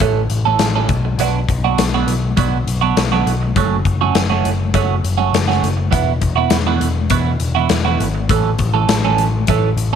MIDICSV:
0, 0, Header, 1, 5, 480
1, 0, Start_track
1, 0, Tempo, 592885
1, 963, Time_signature, 4, 2, 24, 8
1, 8058, End_track
2, 0, Start_track
2, 0, Title_t, "Clean electric guitar"
2, 0, Program_c, 0, 27
2, 6, Note_on_c, 0, 52, 89
2, 9, Note_on_c, 0, 57, 80
2, 12, Note_on_c, 0, 69, 88
2, 13, Note_on_c, 0, 61, 96
2, 161, Note_off_c, 0, 52, 0
2, 162, Note_off_c, 0, 57, 0
2, 164, Note_off_c, 0, 61, 0
2, 164, Note_off_c, 0, 69, 0
2, 367, Note_on_c, 0, 69, 93
2, 373, Note_on_c, 0, 61, 80
2, 378, Note_on_c, 0, 57, 82
2, 380, Note_on_c, 0, 52, 70
2, 521, Note_off_c, 0, 69, 0
2, 524, Note_off_c, 0, 61, 0
2, 527, Note_off_c, 0, 57, 0
2, 528, Note_off_c, 0, 52, 0
2, 611, Note_on_c, 0, 69, 100
2, 614, Note_on_c, 0, 61, 91
2, 620, Note_on_c, 0, 52, 83
2, 620, Note_on_c, 0, 57, 80
2, 727, Note_off_c, 0, 69, 0
2, 728, Note_off_c, 0, 61, 0
2, 731, Note_off_c, 0, 52, 0
2, 732, Note_off_c, 0, 57, 0
2, 970, Note_on_c, 0, 54, 78
2, 972, Note_on_c, 0, 59, 80
2, 977, Note_on_c, 0, 62, 93
2, 982, Note_on_c, 0, 66, 97
2, 1122, Note_off_c, 0, 54, 0
2, 1123, Note_off_c, 0, 59, 0
2, 1126, Note_off_c, 0, 62, 0
2, 1128, Note_off_c, 0, 66, 0
2, 1331, Note_on_c, 0, 66, 97
2, 1332, Note_on_c, 0, 62, 76
2, 1338, Note_on_c, 0, 59, 74
2, 1339, Note_on_c, 0, 54, 68
2, 1483, Note_off_c, 0, 62, 0
2, 1483, Note_off_c, 0, 66, 0
2, 1486, Note_off_c, 0, 59, 0
2, 1487, Note_off_c, 0, 54, 0
2, 1573, Note_on_c, 0, 66, 95
2, 1574, Note_on_c, 0, 59, 84
2, 1574, Note_on_c, 0, 62, 88
2, 1581, Note_on_c, 0, 54, 74
2, 1723, Note_off_c, 0, 66, 0
2, 1724, Note_off_c, 0, 59, 0
2, 1724, Note_off_c, 0, 62, 0
2, 1728, Note_off_c, 0, 54, 0
2, 1918, Note_on_c, 0, 54, 88
2, 1924, Note_on_c, 0, 59, 87
2, 1928, Note_on_c, 0, 62, 92
2, 1931, Note_on_c, 0, 66, 90
2, 2076, Note_off_c, 0, 54, 0
2, 2079, Note_off_c, 0, 59, 0
2, 2081, Note_off_c, 0, 62, 0
2, 2083, Note_off_c, 0, 66, 0
2, 2278, Note_on_c, 0, 66, 84
2, 2283, Note_on_c, 0, 59, 74
2, 2286, Note_on_c, 0, 62, 80
2, 2287, Note_on_c, 0, 54, 74
2, 2436, Note_off_c, 0, 66, 0
2, 2438, Note_off_c, 0, 59, 0
2, 2440, Note_off_c, 0, 54, 0
2, 2440, Note_off_c, 0, 62, 0
2, 2525, Note_on_c, 0, 66, 95
2, 2530, Note_on_c, 0, 62, 79
2, 2531, Note_on_c, 0, 59, 88
2, 2535, Note_on_c, 0, 54, 81
2, 2679, Note_off_c, 0, 66, 0
2, 2682, Note_off_c, 0, 59, 0
2, 2682, Note_off_c, 0, 62, 0
2, 2684, Note_off_c, 0, 54, 0
2, 2887, Note_on_c, 0, 54, 73
2, 2892, Note_on_c, 0, 57, 89
2, 2893, Note_on_c, 0, 61, 83
2, 2895, Note_on_c, 0, 66, 78
2, 3040, Note_off_c, 0, 54, 0
2, 3043, Note_off_c, 0, 57, 0
2, 3043, Note_off_c, 0, 61, 0
2, 3044, Note_off_c, 0, 66, 0
2, 3247, Note_on_c, 0, 66, 90
2, 3250, Note_on_c, 0, 57, 82
2, 3250, Note_on_c, 0, 61, 89
2, 3254, Note_on_c, 0, 54, 76
2, 3400, Note_off_c, 0, 66, 0
2, 3402, Note_off_c, 0, 57, 0
2, 3402, Note_off_c, 0, 61, 0
2, 3404, Note_off_c, 0, 54, 0
2, 3478, Note_on_c, 0, 66, 89
2, 3479, Note_on_c, 0, 61, 89
2, 3485, Note_on_c, 0, 54, 84
2, 3485, Note_on_c, 0, 57, 75
2, 3636, Note_off_c, 0, 61, 0
2, 3636, Note_off_c, 0, 66, 0
2, 3639, Note_off_c, 0, 54, 0
2, 3639, Note_off_c, 0, 57, 0
2, 3837, Note_on_c, 0, 54, 84
2, 3840, Note_on_c, 0, 57, 78
2, 3845, Note_on_c, 0, 61, 83
2, 3846, Note_on_c, 0, 66, 97
2, 3995, Note_off_c, 0, 54, 0
2, 3997, Note_off_c, 0, 57, 0
2, 3999, Note_off_c, 0, 61, 0
2, 4000, Note_off_c, 0, 66, 0
2, 4189, Note_on_c, 0, 66, 75
2, 4193, Note_on_c, 0, 61, 78
2, 4200, Note_on_c, 0, 57, 64
2, 4206, Note_on_c, 0, 54, 70
2, 4352, Note_off_c, 0, 66, 0
2, 4354, Note_off_c, 0, 61, 0
2, 4357, Note_off_c, 0, 57, 0
2, 4360, Note_off_c, 0, 54, 0
2, 4434, Note_on_c, 0, 66, 94
2, 4441, Note_on_c, 0, 61, 86
2, 4442, Note_on_c, 0, 54, 82
2, 4442, Note_on_c, 0, 57, 77
2, 4594, Note_off_c, 0, 66, 0
2, 4598, Note_off_c, 0, 54, 0
2, 4598, Note_off_c, 0, 57, 0
2, 4598, Note_off_c, 0, 61, 0
2, 4784, Note_on_c, 0, 52, 77
2, 4789, Note_on_c, 0, 59, 78
2, 4791, Note_on_c, 0, 64, 94
2, 4794, Note_on_c, 0, 66, 92
2, 4950, Note_off_c, 0, 52, 0
2, 4952, Note_off_c, 0, 59, 0
2, 4953, Note_off_c, 0, 64, 0
2, 4954, Note_off_c, 0, 66, 0
2, 5147, Note_on_c, 0, 66, 84
2, 5157, Note_on_c, 0, 59, 89
2, 5157, Note_on_c, 0, 64, 89
2, 5162, Note_on_c, 0, 52, 73
2, 5311, Note_off_c, 0, 66, 0
2, 5316, Note_off_c, 0, 59, 0
2, 5316, Note_off_c, 0, 64, 0
2, 5319, Note_off_c, 0, 52, 0
2, 5398, Note_on_c, 0, 59, 87
2, 5398, Note_on_c, 0, 64, 93
2, 5399, Note_on_c, 0, 66, 96
2, 5403, Note_on_c, 0, 52, 86
2, 5557, Note_off_c, 0, 59, 0
2, 5557, Note_off_c, 0, 64, 0
2, 5557, Note_off_c, 0, 66, 0
2, 5559, Note_off_c, 0, 52, 0
2, 5752, Note_on_c, 0, 59, 85
2, 5757, Note_on_c, 0, 52, 75
2, 5758, Note_on_c, 0, 64, 86
2, 5760, Note_on_c, 0, 66, 83
2, 5914, Note_off_c, 0, 59, 0
2, 5916, Note_off_c, 0, 52, 0
2, 5917, Note_off_c, 0, 64, 0
2, 5918, Note_off_c, 0, 66, 0
2, 6112, Note_on_c, 0, 66, 86
2, 6122, Note_on_c, 0, 64, 85
2, 6124, Note_on_c, 0, 59, 80
2, 6126, Note_on_c, 0, 52, 73
2, 6274, Note_off_c, 0, 66, 0
2, 6280, Note_off_c, 0, 59, 0
2, 6280, Note_off_c, 0, 64, 0
2, 6281, Note_off_c, 0, 52, 0
2, 6353, Note_on_c, 0, 66, 94
2, 6356, Note_on_c, 0, 64, 77
2, 6361, Note_on_c, 0, 59, 87
2, 6366, Note_on_c, 0, 52, 80
2, 6515, Note_off_c, 0, 66, 0
2, 6516, Note_off_c, 0, 64, 0
2, 6519, Note_off_c, 0, 59, 0
2, 6522, Note_off_c, 0, 52, 0
2, 6719, Note_on_c, 0, 52, 75
2, 6724, Note_on_c, 0, 57, 81
2, 6724, Note_on_c, 0, 69, 88
2, 6727, Note_on_c, 0, 61, 80
2, 6879, Note_off_c, 0, 52, 0
2, 6881, Note_off_c, 0, 57, 0
2, 6881, Note_off_c, 0, 69, 0
2, 6883, Note_off_c, 0, 61, 0
2, 7074, Note_on_c, 0, 69, 93
2, 7079, Note_on_c, 0, 57, 78
2, 7079, Note_on_c, 0, 61, 80
2, 7083, Note_on_c, 0, 52, 64
2, 7236, Note_off_c, 0, 69, 0
2, 7239, Note_off_c, 0, 57, 0
2, 7239, Note_off_c, 0, 61, 0
2, 7241, Note_off_c, 0, 52, 0
2, 7323, Note_on_c, 0, 61, 93
2, 7324, Note_on_c, 0, 69, 90
2, 7330, Note_on_c, 0, 57, 82
2, 7331, Note_on_c, 0, 52, 82
2, 7481, Note_off_c, 0, 61, 0
2, 7482, Note_off_c, 0, 69, 0
2, 7484, Note_off_c, 0, 57, 0
2, 7485, Note_off_c, 0, 52, 0
2, 7677, Note_on_c, 0, 52, 81
2, 7683, Note_on_c, 0, 57, 85
2, 7688, Note_on_c, 0, 61, 87
2, 7689, Note_on_c, 0, 69, 96
2, 7838, Note_off_c, 0, 52, 0
2, 7841, Note_off_c, 0, 57, 0
2, 7844, Note_off_c, 0, 61, 0
2, 7844, Note_off_c, 0, 69, 0
2, 8058, End_track
3, 0, Start_track
3, 0, Title_t, "Picked electric bass"
3, 0, Program_c, 1, 34
3, 0, Note_on_c, 1, 33, 92
3, 199, Note_off_c, 1, 33, 0
3, 244, Note_on_c, 1, 33, 91
3, 441, Note_off_c, 1, 33, 0
3, 482, Note_on_c, 1, 33, 86
3, 680, Note_off_c, 1, 33, 0
3, 719, Note_on_c, 1, 35, 87
3, 918, Note_off_c, 1, 35, 0
3, 959, Note_on_c, 1, 35, 90
3, 1157, Note_off_c, 1, 35, 0
3, 1205, Note_on_c, 1, 35, 92
3, 1401, Note_off_c, 1, 35, 0
3, 1443, Note_on_c, 1, 35, 74
3, 1640, Note_off_c, 1, 35, 0
3, 1680, Note_on_c, 1, 35, 91
3, 1878, Note_off_c, 1, 35, 0
3, 1919, Note_on_c, 1, 35, 99
3, 2117, Note_off_c, 1, 35, 0
3, 2162, Note_on_c, 1, 35, 78
3, 2359, Note_off_c, 1, 35, 0
3, 2402, Note_on_c, 1, 35, 87
3, 2599, Note_off_c, 1, 35, 0
3, 2643, Note_on_c, 1, 35, 85
3, 2840, Note_off_c, 1, 35, 0
3, 2881, Note_on_c, 1, 30, 89
3, 3079, Note_off_c, 1, 30, 0
3, 3118, Note_on_c, 1, 30, 91
3, 3317, Note_off_c, 1, 30, 0
3, 3362, Note_on_c, 1, 30, 85
3, 3559, Note_off_c, 1, 30, 0
3, 3608, Note_on_c, 1, 30, 85
3, 3803, Note_off_c, 1, 30, 0
3, 3836, Note_on_c, 1, 30, 101
3, 4036, Note_off_c, 1, 30, 0
3, 4084, Note_on_c, 1, 30, 88
3, 4281, Note_off_c, 1, 30, 0
3, 4317, Note_on_c, 1, 30, 85
3, 4517, Note_off_c, 1, 30, 0
3, 4558, Note_on_c, 1, 30, 87
3, 4757, Note_off_c, 1, 30, 0
3, 4797, Note_on_c, 1, 28, 99
3, 4997, Note_off_c, 1, 28, 0
3, 5030, Note_on_c, 1, 28, 90
3, 5233, Note_off_c, 1, 28, 0
3, 5276, Note_on_c, 1, 28, 93
3, 5477, Note_off_c, 1, 28, 0
3, 5521, Note_on_c, 1, 28, 83
3, 5720, Note_off_c, 1, 28, 0
3, 5749, Note_on_c, 1, 28, 94
3, 5953, Note_off_c, 1, 28, 0
3, 5994, Note_on_c, 1, 28, 85
3, 6196, Note_off_c, 1, 28, 0
3, 6240, Note_on_c, 1, 28, 83
3, 6440, Note_off_c, 1, 28, 0
3, 6482, Note_on_c, 1, 32, 96
3, 6681, Note_off_c, 1, 32, 0
3, 6716, Note_on_c, 1, 33, 93
3, 6918, Note_off_c, 1, 33, 0
3, 6952, Note_on_c, 1, 33, 98
3, 7155, Note_off_c, 1, 33, 0
3, 7190, Note_on_c, 1, 33, 86
3, 7394, Note_off_c, 1, 33, 0
3, 7427, Note_on_c, 1, 33, 84
3, 7633, Note_off_c, 1, 33, 0
3, 7673, Note_on_c, 1, 33, 90
3, 7877, Note_off_c, 1, 33, 0
3, 7908, Note_on_c, 1, 33, 84
3, 8058, Note_off_c, 1, 33, 0
3, 8058, End_track
4, 0, Start_track
4, 0, Title_t, "Muted clean electric guitar strokes"
4, 849, Note_on_c, 9, 29, 51
4, 930, Note_off_c, 9, 29, 0
4, 1212, Note_on_c, 9, 29, 49
4, 1293, Note_off_c, 9, 29, 0
4, 2768, Note_on_c, 9, 29, 48
4, 2849, Note_off_c, 9, 29, 0
4, 3123, Note_on_c, 9, 29, 42
4, 3204, Note_off_c, 9, 29, 0
4, 4671, Note_on_c, 9, 29, 48
4, 4751, Note_off_c, 9, 29, 0
4, 5033, Note_on_c, 9, 29, 49
4, 5114, Note_off_c, 9, 29, 0
4, 6596, Note_on_c, 9, 29, 47
4, 6677, Note_off_c, 9, 29, 0
4, 6955, Note_on_c, 9, 29, 46
4, 7036, Note_off_c, 9, 29, 0
4, 8058, End_track
5, 0, Start_track
5, 0, Title_t, "Drums"
5, 0, Note_on_c, 9, 42, 98
5, 3, Note_on_c, 9, 36, 102
5, 80, Note_off_c, 9, 42, 0
5, 84, Note_off_c, 9, 36, 0
5, 240, Note_on_c, 9, 42, 70
5, 321, Note_off_c, 9, 42, 0
5, 478, Note_on_c, 9, 42, 87
5, 481, Note_on_c, 9, 38, 102
5, 559, Note_off_c, 9, 42, 0
5, 562, Note_off_c, 9, 38, 0
5, 718, Note_on_c, 9, 42, 61
5, 721, Note_on_c, 9, 36, 103
5, 799, Note_off_c, 9, 42, 0
5, 802, Note_off_c, 9, 36, 0
5, 961, Note_on_c, 9, 42, 84
5, 1042, Note_off_c, 9, 42, 0
5, 1202, Note_on_c, 9, 36, 68
5, 1204, Note_on_c, 9, 42, 59
5, 1283, Note_off_c, 9, 36, 0
5, 1285, Note_off_c, 9, 42, 0
5, 1444, Note_on_c, 9, 42, 111
5, 1447, Note_on_c, 9, 38, 108
5, 1525, Note_off_c, 9, 42, 0
5, 1528, Note_off_c, 9, 38, 0
5, 1682, Note_on_c, 9, 42, 72
5, 1763, Note_off_c, 9, 42, 0
5, 1921, Note_on_c, 9, 42, 92
5, 1922, Note_on_c, 9, 36, 107
5, 2002, Note_off_c, 9, 42, 0
5, 2003, Note_off_c, 9, 36, 0
5, 2166, Note_on_c, 9, 42, 77
5, 2247, Note_off_c, 9, 42, 0
5, 2404, Note_on_c, 9, 42, 78
5, 2407, Note_on_c, 9, 38, 111
5, 2485, Note_off_c, 9, 42, 0
5, 2488, Note_off_c, 9, 38, 0
5, 2648, Note_on_c, 9, 42, 57
5, 2729, Note_off_c, 9, 42, 0
5, 2882, Note_on_c, 9, 36, 106
5, 2887, Note_on_c, 9, 42, 84
5, 2963, Note_off_c, 9, 36, 0
5, 2968, Note_off_c, 9, 42, 0
5, 3119, Note_on_c, 9, 36, 80
5, 3122, Note_on_c, 9, 42, 57
5, 3200, Note_off_c, 9, 36, 0
5, 3203, Note_off_c, 9, 42, 0
5, 3359, Note_on_c, 9, 42, 95
5, 3362, Note_on_c, 9, 38, 114
5, 3440, Note_off_c, 9, 42, 0
5, 3443, Note_off_c, 9, 38, 0
5, 3604, Note_on_c, 9, 42, 68
5, 3685, Note_off_c, 9, 42, 0
5, 3837, Note_on_c, 9, 42, 84
5, 3838, Note_on_c, 9, 36, 108
5, 3917, Note_off_c, 9, 42, 0
5, 3919, Note_off_c, 9, 36, 0
5, 4084, Note_on_c, 9, 42, 66
5, 4165, Note_off_c, 9, 42, 0
5, 4325, Note_on_c, 9, 42, 89
5, 4328, Note_on_c, 9, 38, 98
5, 4406, Note_off_c, 9, 42, 0
5, 4409, Note_off_c, 9, 38, 0
5, 4452, Note_on_c, 9, 38, 32
5, 4533, Note_off_c, 9, 38, 0
5, 4563, Note_on_c, 9, 42, 71
5, 4644, Note_off_c, 9, 42, 0
5, 4796, Note_on_c, 9, 42, 101
5, 4797, Note_on_c, 9, 36, 97
5, 4877, Note_off_c, 9, 42, 0
5, 4878, Note_off_c, 9, 36, 0
5, 5032, Note_on_c, 9, 42, 70
5, 5033, Note_on_c, 9, 36, 75
5, 5113, Note_off_c, 9, 42, 0
5, 5114, Note_off_c, 9, 36, 0
5, 5264, Note_on_c, 9, 42, 110
5, 5268, Note_on_c, 9, 38, 127
5, 5345, Note_off_c, 9, 42, 0
5, 5349, Note_off_c, 9, 38, 0
5, 5514, Note_on_c, 9, 42, 77
5, 5595, Note_off_c, 9, 42, 0
5, 5746, Note_on_c, 9, 42, 98
5, 5752, Note_on_c, 9, 36, 115
5, 5827, Note_off_c, 9, 42, 0
5, 5833, Note_off_c, 9, 36, 0
5, 5989, Note_on_c, 9, 42, 78
5, 6070, Note_off_c, 9, 42, 0
5, 6229, Note_on_c, 9, 42, 87
5, 6232, Note_on_c, 9, 38, 101
5, 6310, Note_off_c, 9, 42, 0
5, 6313, Note_off_c, 9, 38, 0
5, 6481, Note_on_c, 9, 42, 64
5, 6562, Note_off_c, 9, 42, 0
5, 6715, Note_on_c, 9, 36, 116
5, 6716, Note_on_c, 9, 42, 87
5, 6796, Note_off_c, 9, 36, 0
5, 6797, Note_off_c, 9, 42, 0
5, 6951, Note_on_c, 9, 42, 68
5, 6955, Note_on_c, 9, 36, 70
5, 7032, Note_off_c, 9, 42, 0
5, 7036, Note_off_c, 9, 36, 0
5, 7195, Note_on_c, 9, 42, 106
5, 7198, Note_on_c, 9, 38, 127
5, 7276, Note_off_c, 9, 42, 0
5, 7279, Note_off_c, 9, 38, 0
5, 7434, Note_on_c, 9, 42, 69
5, 7515, Note_off_c, 9, 42, 0
5, 7669, Note_on_c, 9, 42, 91
5, 7678, Note_on_c, 9, 36, 101
5, 7749, Note_off_c, 9, 42, 0
5, 7758, Note_off_c, 9, 36, 0
5, 7914, Note_on_c, 9, 42, 65
5, 7994, Note_off_c, 9, 42, 0
5, 8058, End_track
0, 0, End_of_file